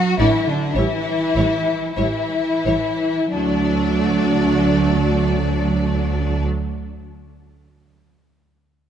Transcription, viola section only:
0, 0, Header, 1, 2, 480
1, 0, Start_track
1, 0, Key_signature, 2, "major"
1, 0, Tempo, 1115242
1, 322, Tempo, 1219512
1, 802, Tempo, 1363636
1, 1282, Tempo, 1312910
1, 1283, Time_signature, 4, 2, 24, 8
1, 3316, End_track
2, 0, Start_track
2, 0, Title_t, "Viola section"
2, 0, Program_c, 0, 48
2, 86, Note_on_c, 0, 62, 39
2, 87, Note_on_c, 0, 57, 39
2, 121, Note_off_c, 0, 57, 0
2, 121, Note_off_c, 0, 62, 0
2, 333, Note_on_c, 0, 55, 39
2, 333, Note_on_c, 0, 64, 35
2, 364, Note_off_c, 0, 64, 0
2, 365, Note_off_c, 0, 55, 0
2, 565, Note_on_c, 0, 64, 34
2, 566, Note_on_c, 0, 55, 34
2, 596, Note_off_c, 0, 64, 0
2, 597, Note_off_c, 0, 55, 0
2, 804, Note_on_c, 0, 64, 33
2, 805, Note_on_c, 0, 55, 34
2, 832, Note_off_c, 0, 64, 0
2, 833, Note_off_c, 0, 55, 0
2, 1047, Note_on_c, 0, 55, 34
2, 1047, Note_on_c, 0, 64, 32
2, 1075, Note_off_c, 0, 55, 0
2, 1076, Note_off_c, 0, 64, 0
2, 1288, Note_on_c, 0, 57, 49
2, 1290, Note_on_c, 0, 66, 45
2, 2422, Note_off_c, 0, 57, 0
2, 2424, Note_off_c, 0, 66, 0
2, 3316, End_track
0, 0, End_of_file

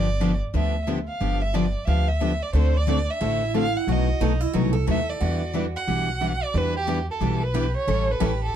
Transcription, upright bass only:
0, 0, Header, 1, 2, 480
1, 0, Start_track
1, 0, Tempo, 333704
1, 1732, Time_signature, 4, 2, 24, 8
1, 12308, End_track
2, 0, Start_track
2, 0, Title_t, "Upright bass"
2, 0, Program_c, 0, 32
2, 0, Note_on_c, 0, 31, 76
2, 579, Note_off_c, 0, 31, 0
2, 774, Note_on_c, 0, 38, 83
2, 1541, Note_off_c, 0, 38, 0
2, 1735, Note_on_c, 0, 31, 77
2, 2502, Note_off_c, 0, 31, 0
2, 2691, Note_on_c, 0, 38, 75
2, 3459, Note_off_c, 0, 38, 0
2, 3645, Note_on_c, 0, 38, 84
2, 4416, Note_off_c, 0, 38, 0
2, 4617, Note_on_c, 0, 33, 83
2, 5383, Note_off_c, 0, 33, 0
2, 5570, Note_on_c, 0, 35, 77
2, 5954, Note_off_c, 0, 35, 0
2, 6051, Note_on_c, 0, 35, 68
2, 6459, Note_off_c, 0, 35, 0
2, 6535, Note_on_c, 0, 36, 76
2, 6941, Note_off_c, 0, 36, 0
2, 7016, Note_on_c, 0, 39, 70
2, 7422, Note_off_c, 0, 39, 0
2, 7496, Note_on_c, 0, 40, 81
2, 8261, Note_off_c, 0, 40, 0
2, 8452, Note_on_c, 0, 35, 69
2, 9219, Note_off_c, 0, 35, 0
2, 9409, Note_on_c, 0, 40, 83
2, 10176, Note_off_c, 0, 40, 0
2, 10364, Note_on_c, 0, 35, 82
2, 11133, Note_off_c, 0, 35, 0
2, 11328, Note_on_c, 0, 33, 81
2, 11711, Note_off_c, 0, 33, 0
2, 11812, Note_on_c, 0, 33, 81
2, 12217, Note_off_c, 0, 33, 0
2, 12308, End_track
0, 0, End_of_file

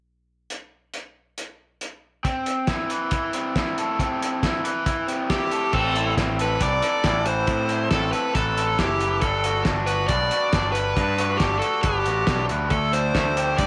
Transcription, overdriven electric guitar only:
0, 0, Header, 1, 2, 480
1, 0, Start_track
1, 0, Tempo, 436681
1, 542, Time_signature, 4, 2, 24, 8
1, 15023, End_track
2, 0, Start_track
2, 0, Title_t, "Overdriven electric guitar"
2, 0, Program_c, 0, 29
2, 2466, Note_on_c, 0, 60, 57
2, 2945, Note_on_c, 0, 64, 49
2, 3198, Note_on_c, 0, 71, 62
2, 3430, Note_off_c, 0, 64, 0
2, 3434, Note_on_c, 0, 64, 58
2, 3660, Note_off_c, 0, 60, 0
2, 3664, Note_on_c, 0, 60, 59
2, 3892, Note_off_c, 0, 64, 0
2, 3905, Note_on_c, 0, 64, 59
2, 4163, Note_on_c, 0, 69, 55
2, 4375, Note_off_c, 0, 60, 0
2, 4388, Note_on_c, 0, 60, 60
2, 4421, Note_off_c, 0, 71, 0
2, 4855, Note_off_c, 0, 64, 0
2, 4869, Note_on_c, 0, 64, 48
2, 5102, Note_on_c, 0, 71, 67
2, 5327, Note_off_c, 0, 64, 0
2, 5340, Note_on_c, 0, 64, 57
2, 5355, Note_off_c, 0, 69, 0
2, 5565, Note_off_c, 0, 60, 0
2, 5578, Note_on_c, 0, 60, 55
2, 5809, Note_off_c, 0, 64, 0
2, 5822, Note_on_c, 0, 64, 50
2, 6067, Note_on_c, 0, 69, 56
2, 6295, Note_off_c, 0, 60, 0
2, 6304, Note_off_c, 0, 64, 0
2, 6304, Note_off_c, 0, 71, 0
2, 6306, Note_off_c, 0, 69, 0
2, 6309, Note_on_c, 0, 60, 57
2, 6546, Note_on_c, 0, 64, 57
2, 6778, Note_off_c, 0, 60, 0
2, 6791, Note_on_c, 0, 60, 52
2, 7030, Note_on_c, 0, 69, 57
2, 7248, Note_on_c, 0, 71, 60
2, 7482, Note_off_c, 0, 69, 0
2, 7495, Note_on_c, 0, 69, 60
2, 7717, Note_off_c, 0, 64, 0
2, 7730, Note_on_c, 0, 64, 64
2, 7970, Note_off_c, 0, 71, 0
2, 7974, Note_on_c, 0, 71, 62
2, 7986, Note_off_c, 0, 60, 0
2, 8209, Note_on_c, 0, 60, 56
2, 8438, Note_off_c, 0, 64, 0
2, 8452, Note_on_c, 0, 64, 53
2, 8675, Note_off_c, 0, 60, 0
2, 8688, Note_on_c, 0, 60, 58
2, 8698, Note_off_c, 0, 69, 0
2, 8937, Note_on_c, 0, 69, 59
2, 9180, Note_off_c, 0, 71, 0
2, 9185, Note_on_c, 0, 71, 60
2, 9404, Note_off_c, 0, 69, 0
2, 9417, Note_on_c, 0, 69, 52
2, 9644, Note_off_c, 0, 64, 0
2, 9657, Note_on_c, 0, 64, 56
2, 9893, Note_off_c, 0, 60, 0
2, 9899, Note_off_c, 0, 71, 0
2, 9904, Note_on_c, 0, 71, 58
2, 10138, Note_off_c, 0, 64, 0
2, 10138, Note_off_c, 0, 69, 0
2, 10142, Note_on_c, 0, 62, 65
2, 10374, Note_on_c, 0, 66, 58
2, 10615, Note_off_c, 0, 62, 0
2, 10620, Note_on_c, 0, 62, 53
2, 10841, Note_off_c, 0, 66, 0
2, 10854, Note_on_c, 0, 66, 65
2, 11100, Note_off_c, 0, 71, 0
2, 11104, Note_on_c, 0, 71, 68
2, 11323, Note_off_c, 0, 66, 0
2, 11336, Note_on_c, 0, 66, 55
2, 11578, Note_off_c, 0, 62, 0
2, 11582, Note_on_c, 0, 62, 64
2, 11810, Note_off_c, 0, 71, 0
2, 11823, Note_on_c, 0, 71, 66
2, 12053, Note_off_c, 0, 62, 0
2, 12057, Note_on_c, 0, 62, 65
2, 12280, Note_off_c, 0, 66, 0
2, 12293, Note_on_c, 0, 66, 57
2, 12538, Note_off_c, 0, 62, 0
2, 12542, Note_on_c, 0, 62, 56
2, 12763, Note_off_c, 0, 66, 0
2, 12776, Note_on_c, 0, 66, 61
2, 13009, Note_off_c, 0, 71, 0
2, 13022, Note_on_c, 0, 71, 60
2, 13248, Note_off_c, 0, 66, 0
2, 13262, Note_on_c, 0, 66, 57
2, 13492, Note_off_c, 0, 62, 0
2, 13497, Note_on_c, 0, 62, 59
2, 13725, Note_off_c, 0, 71, 0
2, 13739, Note_on_c, 0, 71, 63
2, 13971, Note_on_c, 0, 57, 59
2, 13978, Note_off_c, 0, 71, 0
2, 13979, Note_off_c, 0, 66, 0
2, 14207, Note_off_c, 0, 62, 0
2, 14212, Note_on_c, 0, 62, 54
2, 14451, Note_off_c, 0, 57, 0
2, 14455, Note_on_c, 0, 57, 58
2, 14693, Note_on_c, 0, 67, 60
2, 14941, Note_on_c, 0, 72, 57
2, 15023, Note_off_c, 0, 57, 0
2, 15023, Note_off_c, 0, 62, 0
2, 15023, Note_off_c, 0, 67, 0
2, 15023, Note_off_c, 0, 72, 0
2, 15023, End_track
0, 0, End_of_file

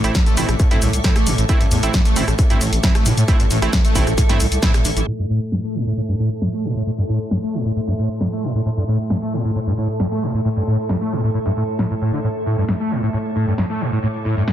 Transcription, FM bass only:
0, 0, Header, 1, 2, 480
1, 0, Start_track
1, 0, Key_signature, 0, "minor"
1, 0, Tempo, 447761
1, 1598, Time_signature, 4, 2, 24, 8
1, 15573, End_track
2, 0, Start_track
2, 0, Title_t, "FM bass"
2, 0, Program_c, 0, 39
2, 41, Note_on_c, 0, 33, 81
2, 112, Note_off_c, 0, 33, 0
2, 399, Note_on_c, 0, 33, 91
2, 473, Note_off_c, 0, 33, 0
2, 522, Note_on_c, 0, 33, 79
2, 592, Note_off_c, 0, 33, 0
2, 878, Note_on_c, 0, 36, 100
2, 953, Note_off_c, 0, 36, 0
2, 1001, Note_on_c, 0, 36, 87
2, 1072, Note_off_c, 0, 36, 0
2, 1357, Note_on_c, 0, 33, 99
2, 1432, Note_off_c, 0, 33, 0
2, 1482, Note_on_c, 0, 33, 86
2, 1552, Note_off_c, 0, 33, 0
2, 1722, Note_on_c, 0, 33, 78
2, 1792, Note_off_c, 0, 33, 0
2, 1837, Note_on_c, 0, 40, 97
2, 1912, Note_off_c, 0, 40, 0
2, 1962, Note_on_c, 0, 33, 78
2, 2032, Note_off_c, 0, 33, 0
2, 2318, Note_on_c, 0, 33, 94
2, 2392, Note_off_c, 0, 33, 0
2, 2442, Note_on_c, 0, 33, 82
2, 2512, Note_off_c, 0, 33, 0
2, 2799, Note_on_c, 0, 33, 97
2, 2873, Note_off_c, 0, 33, 0
2, 2923, Note_on_c, 0, 33, 89
2, 2992, Note_off_c, 0, 33, 0
2, 3278, Note_on_c, 0, 45, 97
2, 3353, Note_off_c, 0, 45, 0
2, 3402, Note_on_c, 0, 45, 85
2, 3472, Note_off_c, 0, 45, 0
2, 3642, Note_on_c, 0, 33, 76
2, 3712, Note_off_c, 0, 33, 0
2, 3758, Note_on_c, 0, 33, 102
2, 3833, Note_off_c, 0, 33, 0
2, 3882, Note_on_c, 0, 33, 83
2, 3952, Note_off_c, 0, 33, 0
2, 4239, Note_on_c, 0, 33, 95
2, 4313, Note_off_c, 0, 33, 0
2, 4361, Note_on_c, 0, 33, 81
2, 4431, Note_off_c, 0, 33, 0
2, 4718, Note_on_c, 0, 36, 100
2, 4792, Note_off_c, 0, 36, 0
2, 4841, Note_on_c, 0, 36, 86
2, 4912, Note_off_c, 0, 36, 0
2, 5199, Note_on_c, 0, 33, 98
2, 5273, Note_off_c, 0, 33, 0
2, 5323, Note_on_c, 0, 33, 86
2, 5392, Note_off_c, 0, 33, 0
2, 15573, End_track
0, 0, End_of_file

